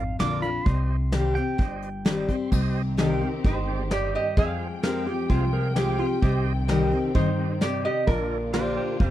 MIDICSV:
0, 0, Header, 1, 8, 480
1, 0, Start_track
1, 0, Key_signature, -3, "minor"
1, 0, Tempo, 463320
1, 687, Time_signature, 4, 2, 24, 8
1, 9432, End_track
2, 0, Start_track
2, 0, Title_t, "Tonewheel organ"
2, 0, Program_c, 0, 16
2, 197, Note_on_c, 0, 65, 69
2, 204, Note_on_c, 0, 70, 64
2, 209, Note_on_c, 0, 74, 82
2, 516, Note_off_c, 0, 65, 0
2, 519, Note_off_c, 0, 70, 0
2, 522, Note_off_c, 0, 74, 0
2, 679, Note_on_c, 0, 67, 77
2, 684, Note_on_c, 0, 72, 67
2, 692, Note_on_c, 0, 75, 79
2, 997, Note_off_c, 0, 67, 0
2, 1000, Note_off_c, 0, 72, 0
2, 1004, Note_off_c, 0, 75, 0
2, 1162, Note_on_c, 0, 67, 66
2, 1168, Note_on_c, 0, 72, 69
2, 1175, Note_on_c, 0, 77, 80
2, 1479, Note_off_c, 0, 67, 0
2, 1482, Note_off_c, 0, 72, 0
2, 1486, Note_off_c, 0, 77, 0
2, 1644, Note_on_c, 0, 67, 73
2, 1649, Note_on_c, 0, 72, 65
2, 1658, Note_on_c, 0, 75, 81
2, 1961, Note_off_c, 0, 67, 0
2, 1963, Note_off_c, 0, 72, 0
2, 1968, Note_off_c, 0, 75, 0
2, 2128, Note_on_c, 0, 67, 90
2, 2132, Note_on_c, 0, 75, 92
2, 2135, Note_on_c, 0, 72, 80
2, 2371, Note_on_c, 0, 84, 72
2, 2443, Note_off_c, 0, 67, 0
2, 2447, Note_off_c, 0, 72, 0
2, 2449, Note_off_c, 0, 75, 0
2, 2594, Note_off_c, 0, 84, 0
2, 2603, Note_on_c, 0, 67, 108
2, 2610, Note_on_c, 0, 72, 109
2, 2617, Note_on_c, 0, 75, 127
2, 2921, Note_off_c, 0, 67, 0
2, 2924, Note_off_c, 0, 72, 0
2, 2928, Note_off_c, 0, 75, 0
2, 3086, Note_on_c, 0, 67, 69
2, 3094, Note_on_c, 0, 72, 65
2, 3097, Note_on_c, 0, 77, 77
2, 3402, Note_off_c, 0, 67, 0
2, 3407, Note_off_c, 0, 72, 0
2, 3408, Note_off_c, 0, 77, 0
2, 3560, Note_on_c, 0, 67, 75
2, 3568, Note_on_c, 0, 72, 69
2, 3576, Note_on_c, 0, 75, 83
2, 3723, Note_off_c, 0, 67, 0
2, 3726, Note_off_c, 0, 72, 0
2, 3730, Note_off_c, 0, 75, 0
2, 3805, Note_on_c, 0, 67, 72
2, 3809, Note_on_c, 0, 72, 65
2, 3818, Note_on_c, 0, 74, 82
2, 3965, Note_off_c, 0, 67, 0
2, 3967, Note_off_c, 0, 72, 0
2, 3972, Note_off_c, 0, 74, 0
2, 4043, Note_on_c, 0, 67, 71
2, 4048, Note_on_c, 0, 72, 68
2, 4054, Note_on_c, 0, 75, 85
2, 4361, Note_off_c, 0, 67, 0
2, 4363, Note_off_c, 0, 72, 0
2, 4366, Note_off_c, 0, 75, 0
2, 4528, Note_on_c, 0, 68, 102
2, 4537, Note_on_c, 0, 72, 84
2, 4542, Note_on_c, 0, 77, 106
2, 4844, Note_off_c, 0, 68, 0
2, 4848, Note_off_c, 0, 72, 0
2, 4850, Note_off_c, 0, 77, 0
2, 4999, Note_on_c, 0, 68, 73
2, 5005, Note_on_c, 0, 72, 66
2, 5011, Note_on_c, 0, 77, 83
2, 5318, Note_off_c, 0, 68, 0
2, 5322, Note_off_c, 0, 72, 0
2, 5325, Note_off_c, 0, 77, 0
2, 5484, Note_on_c, 0, 68, 92
2, 5491, Note_on_c, 0, 72, 82
2, 5497, Note_on_c, 0, 77, 101
2, 5644, Note_off_c, 0, 68, 0
2, 5648, Note_off_c, 0, 72, 0
2, 5651, Note_off_c, 0, 77, 0
2, 5727, Note_on_c, 0, 68, 91
2, 5732, Note_on_c, 0, 72, 78
2, 5740, Note_on_c, 0, 77, 101
2, 5886, Note_off_c, 0, 68, 0
2, 5888, Note_off_c, 0, 72, 0
2, 5892, Note_off_c, 0, 77, 0
2, 5973, Note_on_c, 0, 68, 91
2, 5975, Note_on_c, 0, 72, 81
2, 5985, Note_on_c, 0, 77, 103
2, 6285, Note_off_c, 0, 68, 0
2, 6286, Note_off_c, 0, 72, 0
2, 6291, Note_off_c, 0, 77, 0
2, 6446, Note_on_c, 0, 67, 121
2, 6451, Note_on_c, 0, 72, 105
2, 6457, Note_on_c, 0, 75, 127
2, 6761, Note_off_c, 0, 67, 0
2, 6764, Note_off_c, 0, 72, 0
2, 6767, Note_off_c, 0, 75, 0
2, 6922, Note_on_c, 0, 67, 79
2, 6927, Note_on_c, 0, 72, 65
2, 6935, Note_on_c, 0, 75, 76
2, 7239, Note_off_c, 0, 67, 0
2, 7241, Note_off_c, 0, 72, 0
2, 7246, Note_off_c, 0, 75, 0
2, 7404, Note_on_c, 0, 67, 76
2, 7410, Note_on_c, 0, 72, 71
2, 7416, Note_on_c, 0, 75, 84
2, 7563, Note_off_c, 0, 67, 0
2, 7566, Note_off_c, 0, 72, 0
2, 7569, Note_off_c, 0, 75, 0
2, 7645, Note_on_c, 0, 67, 72
2, 7653, Note_on_c, 0, 72, 69
2, 7657, Note_on_c, 0, 75, 80
2, 7803, Note_off_c, 0, 67, 0
2, 7807, Note_off_c, 0, 72, 0
2, 7810, Note_off_c, 0, 75, 0
2, 7885, Note_on_c, 0, 67, 72
2, 7893, Note_on_c, 0, 72, 70
2, 7898, Note_on_c, 0, 75, 82
2, 8200, Note_off_c, 0, 67, 0
2, 8204, Note_off_c, 0, 72, 0
2, 8206, Note_off_c, 0, 75, 0
2, 8363, Note_on_c, 0, 65, 95
2, 8371, Note_on_c, 0, 70, 85
2, 8375, Note_on_c, 0, 74, 112
2, 8678, Note_off_c, 0, 65, 0
2, 8682, Note_off_c, 0, 70, 0
2, 8684, Note_off_c, 0, 74, 0
2, 8848, Note_on_c, 0, 65, 73
2, 8852, Note_on_c, 0, 70, 67
2, 8859, Note_on_c, 0, 74, 80
2, 9160, Note_off_c, 0, 65, 0
2, 9162, Note_off_c, 0, 70, 0
2, 9166, Note_off_c, 0, 74, 0
2, 9321, Note_on_c, 0, 65, 90
2, 9329, Note_on_c, 0, 70, 80
2, 9336, Note_on_c, 0, 77, 94
2, 9432, Note_off_c, 0, 65, 0
2, 9432, Note_off_c, 0, 70, 0
2, 9432, Note_off_c, 0, 77, 0
2, 9432, End_track
3, 0, Start_track
3, 0, Title_t, "Pedal steel guitar"
3, 0, Program_c, 1, 26
3, 0, Note_on_c, 1, 77, 95
3, 163, Note_off_c, 1, 77, 0
3, 208, Note_on_c, 1, 86, 97
3, 434, Note_off_c, 1, 86, 0
3, 438, Note_on_c, 1, 83, 97
3, 677, Note_off_c, 1, 83, 0
3, 677, Note_on_c, 1, 84, 93
3, 1400, Note_on_c, 1, 79, 95
3, 1404, Note_off_c, 1, 84, 0
3, 2445, Note_off_c, 1, 79, 0
3, 5011, Note_on_c, 1, 70, 83
3, 5244, Note_off_c, 1, 70, 0
3, 5249, Note_on_c, 1, 67, 88
3, 5483, Note_off_c, 1, 67, 0
3, 5488, Note_on_c, 1, 65, 90
3, 5722, Note_off_c, 1, 65, 0
3, 5728, Note_on_c, 1, 70, 95
3, 5958, Note_off_c, 1, 70, 0
3, 5962, Note_on_c, 1, 67, 77
3, 6199, Note_off_c, 1, 67, 0
3, 6210, Note_on_c, 1, 65, 88
3, 6442, Note_off_c, 1, 65, 0
3, 6446, Note_on_c, 1, 67, 96
3, 6681, Note_off_c, 1, 67, 0
3, 8845, Note_on_c, 1, 67, 75
3, 8851, Note_on_c, 1, 72, 87
3, 9071, Note_off_c, 1, 67, 0
3, 9078, Note_off_c, 1, 72, 0
3, 9083, Note_on_c, 1, 67, 67
3, 9090, Note_on_c, 1, 72, 85
3, 9307, Note_off_c, 1, 67, 0
3, 9317, Note_off_c, 1, 72, 0
3, 9324, Note_on_c, 1, 67, 71
3, 9329, Note_on_c, 1, 72, 88
3, 9432, Note_off_c, 1, 67, 0
3, 9432, Note_off_c, 1, 72, 0
3, 9432, End_track
4, 0, Start_track
4, 0, Title_t, "Resonator guitar played with a steel bar"
4, 0, Program_c, 2, 25
4, 3089, Note_on_c, 2, 70, 83
4, 3100, Note_on_c, 2, 63, 64
4, 3542, Note_off_c, 2, 63, 0
4, 3571, Note_off_c, 2, 70, 0
4, 3575, Note_on_c, 2, 72, 91
4, 3583, Note_on_c, 2, 63, 78
4, 4024, Note_off_c, 2, 63, 0
4, 4059, Note_on_c, 2, 74, 94
4, 4064, Note_on_c, 2, 67, 78
4, 4068, Note_off_c, 2, 72, 0
4, 4278, Note_off_c, 2, 74, 0
4, 4281, Note_off_c, 2, 67, 0
4, 4300, Note_on_c, 2, 67, 70
4, 4305, Note_on_c, 2, 75, 88
4, 4519, Note_off_c, 2, 67, 0
4, 4520, Note_off_c, 2, 75, 0
4, 4535, Note_on_c, 2, 68, 88
4, 4540, Note_on_c, 2, 77, 109
4, 4980, Note_off_c, 2, 77, 0
4, 4981, Note_off_c, 2, 68, 0
4, 6940, Note_on_c, 2, 63, 66
4, 6945, Note_on_c, 2, 70, 83
4, 7381, Note_off_c, 2, 63, 0
4, 7382, Note_off_c, 2, 70, 0
4, 7407, Note_on_c, 2, 72, 94
4, 7413, Note_on_c, 2, 63, 80
4, 7857, Note_off_c, 2, 63, 0
4, 7892, Note_on_c, 2, 74, 106
4, 7899, Note_on_c, 2, 67, 78
4, 7902, Note_off_c, 2, 72, 0
4, 8117, Note_off_c, 2, 67, 0
4, 8127, Note_off_c, 2, 74, 0
4, 8131, Note_on_c, 2, 75, 98
4, 8136, Note_on_c, 2, 67, 77
4, 8355, Note_off_c, 2, 67, 0
4, 8361, Note_on_c, 2, 70, 97
4, 8362, Note_off_c, 2, 75, 0
4, 8366, Note_on_c, 2, 62, 71
4, 8809, Note_off_c, 2, 70, 0
4, 8812, Note_off_c, 2, 62, 0
4, 9432, End_track
5, 0, Start_track
5, 0, Title_t, "Steel-string acoustic guitar"
5, 0, Program_c, 3, 25
5, 0, Note_on_c, 3, 41, 86
5, 199, Note_on_c, 3, 50, 83
5, 209, Note_on_c, 3, 58, 91
5, 212, Note_on_c, 3, 62, 97
5, 220, Note_on_c, 3, 65, 95
5, 424, Note_off_c, 3, 65, 0
5, 433, Note_off_c, 3, 50, 0
5, 436, Note_on_c, 3, 65, 56
5, 438, Note_off_c, 3, 58, 0
5, 440, Note_off_c, 3, 62, 0
5, 457, Note_on_c, 3, 62, 53
5, 640, Note_off_c, 3, 41, 0
5, 672, Note_off_c, 3, 65, 0
5, 682, Note_on_c, 3, 48, 90
5, 683, Note_off_c, 3, 62, 0
5, 1159, Note_on_c, 3, 51, 78
5, 1167, Note_on_c, 3, 55, 88
5, 1175, Note_on_c, 3, 60, 99
5, 1180, Note_on_c, 3, 67, 99
5, 1391, Note_off_c, 3, 67, 0
5, 1394, Note_off_c, 3, 51, 0
5, 1398, Note_off_c, 3, 55, 0
5, 1402, Note_off_c, 3, 60, 0
5, 1404, Note_on_c, 3, 67, 54
5, 1425, Note_on_c, 3, 60, 46
5, 1598, Note_off_c, 3, 48, 0
5, 1637, Note_off_c, 3, 67, 0
5, 1640, Note_on_c, 3, 43, 88
5, 1648, Note_off_c, 3, 60, 0
5, 2122, Note_on_c, 3, 51, 86
5, 2134, Note_on_c, 3, 55, 88
5, 2139, Note_on_c, 3, 60, 90
5, 2144, Note_on_c, 3, 67, 99
5, 2352, Note_off_c, 3, 67, 0
5, 2356, Note_off_c, 3, 51, 0
5, 2363, Note_off_c, 3, 55, 0
5, 2364, Note_on_c, 3, 67, 64
5, 2365, Note_off_c, 3, 60, 0
5, 2383, Note_on_c, 3, 60, 54
5, 2558, Note_off_c, 3, 43, 0
5, 2598, Note_off_c, 3, 67, 0
5, 2607, Note_off_c, 3, 60, 0
5, 2612, Note_on_c, 3, 48, 88
5, 3081, Note_on_c, 3, 51, 100
5, 3087, Note_on_c, 3, 55, 91
5, 3096, Note_on_c, 3, 60, 102
5, 3099, Note_on_c, 3, 67, 101
5, 3311, Note_off_c, 3, 67, 0
5, 3317, Note_off_c, 3, 51, 0
5, 3319, Note_off_c, 3, 55, 0
5, 3324, Note_off_c, 3, 60, 0
5, 3324, Note_on_c, 3, 67, 52
5, 3345, Note_on_c, 3, 60, 43
5, 3524, Note_off_c, 3, 48, 0
5, 3558, Note_off_c, 3, 67, 0
5, 3569, Note_off_c, 3, 60, 0
5, 3569, Note_on_c, 3, 56, 81
5, 4026, Note_off_c, 3, 56, 0
5, 4054, Note_on_c, 3, 43, 94
5, 4508, Note_off_c, 3, 43, 0
5, 4529, Note_on_c, 3, 41, 96
5, 5004, Note_on_c, 3, 53, 94
5, 5012, Note_on_c, 3, 56, 97
5, 5021, Note_on_c, 3, 60, 103
5, 5026, Note_on_c, 3, 67, 105
5, 5235, Note_off_c, 3, 67, 0
5, 5238, Note_off_c, 3, 53, 0
5, 5242, Note_off_c, 3, 56, 0
5, 5246, Note_off_c, 3, 60, 0
5, 5248, Note_on_c, 3, 67, 57
5, 5269, Note_on_c, 3, 60, 45
5, 5442, Note_off_c, 3, 41, 0
5, 5480, Note_off_c, 3, 67, 0
5, 5490, Note_off_c, 3, 60, 0
5, 5495, Note_on_c, 3, 48, 91
5, 5966, Note_on_c, 3, 53, 89
5, 5975, Note_on_c, 3, 56, 88
5, 5980, Note_on_c, 3, 60, 89
5, 5986, Note_on_c, 3, 67, 103
5, 6189, Note_off_c, 3, 67, 0
5, 6198, Note_off_c, 3, 53, 0
5, 6201, Note_on_c, 3, 67, 66
5, 6203, Note_off_c, 3, 56, 0
5, 6205, Note_off_c, 3, 60, 0
5, 6222, Note_on_c, 3, 60, 57
5, 6404, Note_off_c, 3, 48, 0
5, 6436, Note_off_c, 3, 67, 0
5, 6446, Note_off_c, 3, 60, 0
5, 6450, Note_on_c, 3, 48, 94
5, 6923, Note_on_c, 3, 51, 96
5, 6930, Note_on_c, 3, 55, 101
5, 6935, Note_on_c, 3, 60, 91
5, 6942, Note_on_c, 3, 67, 110
5, 7147, Note_off_c, 3, 67, 0
5, 7156, Note_off_c, 3, 51, 0
5, 7159, Note_on_c, 3, 67, 59
5, 7160, Note_off_c, 3, 55, 0
5, 7162, Note_off_c, 3, 60, 0
5, 7183, Note_on_c, 3, 60, 54
5, 7361, Note_off_c, 3, 48, 0
5, 7394, Note_off_c, 3, 67, 0
5, 7404, Note_on_c, 3, 51, 86
5, 7406, Note_off_c, 3, 60, 0
5, 7862, Note_off_c, 3, 51, 0
5, 7883, Note_on_c, 3, 48, 89
5, 8341, Note_off_c, 3, 48, 0
5, 8368, Note_on_c, 3, 46, 99
5, 8840, Note_on_c, 3, 50, 92
5, 8853, Note_on_c, 3, 58, 88
5, 8858, Note_on_c, 3, 62, 100
5, 8865, Note_on_c, 3, 65, 112
5, 9278, Note_off_c, 3, 46, 0
5, 9299, Note_off_c, 3, 50, 0
5, 9305, Note_off_c, 3, 58, 0
5, 9307, Note_off_c, 3, 62, 0
5, 9311, Note_off_c, 3, 65, 0
5, 9328, Note_on_c, 3, 41, 88
5, 9432, Note_off_c, 3, 41, 0
5, 9432, End_track
6, 0, Start_track
6, 0, Title_t, "String section"
6, 0, Program_c, 4, 48
6, 2612, Note_on_c, 4, 60, 70
6, 2614, Note_on_c, 4, 67, 88
6, 2616, Note_on_c, 4, 51, 81
6, 4513, Note_off_c, 4, 60, 0
6, 4514, Note_off_c, 4, 67, 0
6, 4515, Note_off_c, 4, 51, 0
6, 4539, Note_on_c, 4, 79, 89
6, 4543, Note_on_c, 4, 56, 70
6, 4545, Note_on_c, 4, 53, 78
6, 6437, Note_off_c, 4, 56, 0
6, 6438, Note_off_c, 4, 53, 0
6, 6462, Note_on_c, 4, 51, 82
6, 6464, Note_on_c, 4, 60, 72
6, 8333, Note_off_c, 4, 79, 0
6, 8354, Note_off_c, 4, 51, 0
6, 8355, Note_off_c, 4, 60, 0
6, 8363, Note_on_c, 4, 65, 88
6, 8365, Note_on_c, 4, 50, 83
6, 8368, Note_on_c, 4, 58, 73
6, 9432, Note_off_c, 4, 50, 0
6, 9432, Note_off_c, 4, 58, 0
6, 9432, Note_off_c, 4, 65, 0
6, 9432, End_track
7, 0, Start_track
7, 0, Title_t, "Upright bass"
7, 0, Program_c, 5, 32
7, 0, Note_on_c, 5, 32, 84
7, 132, Note_off_c, 5, 32, 0
7, 207, Note_on_c, 5, 34, 88
7, 615, Note_off_c, 5, 34, 0
7, 685, Note_on_c, 5, 36, 91
7, 1404, Note_off_c, 5, 36, 0
7, 1645, Note_on_c, 5, 31, 84
7, 2364, Note_off_c, 5, 31, 0
7, 2612, Note_on_c, 5, 36, 99
7, 3328, Note_off_c, 5, 36, 0
7, 3569, Note_on_c, 5, 31, 82
7, 4286, Note_off_c, 5, 31, 0
7, 4527, Note_on_c, 5, 41, 98
7, 5245, Note_off_c, 5, 41, 0
7, 5489, Note_on_c, 5, 36, 86
7, 6205, Note_off_c, 5, 36, 0
7, 6447, Note_on_c, 5, 36, 102
7, 7164, Note_off_c, 5, 36, 0
7, 7409, Note_on_c, 5, 43, 86
7, 8125, Note_off_c, 5, 43, 0
7, 8367, Note_on_c, 5, 34, 101
7, 9082, Note_off_c, 5, 34, 0
7, 9324, Note_on_c, 5, 29, 85
7, 9432, Note_off_c, 5, 29, 0
7, 9432, End_track
8, 0, Start_track
8, 0, Title_t, "Drums"
8, 204, Note_on_c, 9, 38, 113
8, 204, Note_on_c, 9, 42, 65
8, 308, Note_off_c, 9, 38, 0
8, 308, Note_off_c, 9, 42, 0
8, 442, Note_on_c, 9, 42, 63
8, 545, Note_off_c, 9, 42, 0
8, 684, Note_on_c, 9, 42, 62
8, 685, Note_on_c, 9, 36, 116
8, 787, Note_off_c, 9, 42, 0
8, 789, Note_off_c, 9, 36, 0
8, 1164, Note_on_c, 9, 38, 105
8, 1164, Note_on_c, 9, 42, 61
8, 1268, Note_off_c, 9, 38, 0
8, 1268, Note_off_c, 9, 42, 0
8, 1407, Note_on_c, 9, 42, 59
8, 1511, Note_off_c, 9, 42, 0
8, 1647, Note_on_c, 9, 36, 107
8, 1647, Note_on_c, 9, 42, 56
8, 1750, Note_off_c, 9, 42, 0
8, 1751, Note_off_c, 9, 36, 0
8, 1890, Note_on_c, 9, 42, 64
8, 1993, Note_off_c, 9, 42, 0
8, 2130, Note_on_c, 9, 38, 112
8, 2130, Note_on_c, 9, 42, 62
8, 2234, Note_off_c, 9, 38, 0
8, 2234, Note_off_c, 9, 42, 0
8, 2369, Note_on_c, 9, 36, 75
8, 2373, Note_on_c, 9, 42, 59
8, 2473, Note_off_c, 9, 36, 0
8, 2476, Note_off_c, 9, 42, 0
8, 2610, Note_on_c, 9, 36, 108
8, 2612, Note_on_c, 9, 49, 109
8, 2714, Note_off_c, 9, 36, 0
8, 2715, Note_off_c, 9, 49, 0
8, 3091, Note_on_c, 9, 38, 109
8, 3091, Note_on_c, 9, 46, 61
8, 3195, Note_off_c, 9, 38, 0
8, 3195, Note_off_c, 9, 46, 0
8, 3567, Note_on_c, 9, 46, 55
8, 3569, Note_on_c, 9, 36, 113
8, 3671, Note_off_c, 9, 46, 0
8, 3672, Note_off_c, 9, 36, 0
8, 4049, Note_on_c, 9, 38, 109
8, 4049, Note_on_c, 9, 46, 54
8, 4153, Note_off_c, 9, 38, 0
8, 4153, Note_off_c, 9, 46, 0
8, 4527, Note_on_c, 9, 46, 55
8, 4529, Note_on_c, 9, 36, 117
8, 4630, Note_off_c, 9, 46, 0
8, 4632, Note_off_c, 9, 36, 0
8, 5008, Note_on_c, 9, 38, 116
8, 5112, Note_off_c, 9, 38, 0
8, 5485, Note_on_c, 9, 46, 51
8, 5489, Note_on_c, 9, 36, 111
8, 5589, Note_off_c, 9, 46, 0
8, 5592, Note_off_c, 9, 36, 0
8, 5967, Note_on_c, 9, 38, 109
8, 6071, Note_off_c, 9, 38, 0
8, 6445, Note_on_c, 9, 46, 53
8, 6448, Note_on_c, 9, 36, 112
8, 6548, Note_off_c, 9, 46, 0
8, 6552, Note_off_c, 9, 36, 0
8, 6928, Note_on_c, 9, 38, 117
8, 6928, Note_on_c, 9, 46, 55
8, 7032, Note_off_c, 9, 38, 0
8, 7032, Note_off_c, 9, 46, 0
8, 7406, Note_on_c, 9, 46, 58
8, 7408, Note_on_c, 9, 36, 120
8, 7509, Note_off_c, 9, 46, 0
8, 7511, Note_off_c, 9, 36, 0
8, 7888, Note_on_c, 9, 38, 108
8, 7888, Note_on_c, 9, 46, 59
8, 7991, Note_off_c, 9, 38, 0
8, 7991, Note_off_c, 9, 46, 0
8, 8366, Note_on_c, 9, 36, 120
8, 8366, Note_on_c, 9, 46, 52
8, 8470, Note_off_c, 9, 36, 0
8, 8470, Note_off_c, 9, 46, 0
8, 8843, Note_on_c, 9, 38, 113
8, 8843, Note_on_c, 9, 46, 50
8, 8946, Note_off_c, 9, 38, 0
8, 8946, Note_off_c, 9, 46, 0
8, 9323, Note_on_c, 9, 46, 48
8, 9325, Note_on_c, 9, 36, 110
8, 9426, Note_off_c, 9, 46, 0
8, 9428, Note_off_c, 9, 36, 0
8, 9432, End_track
0, 0, End_of_file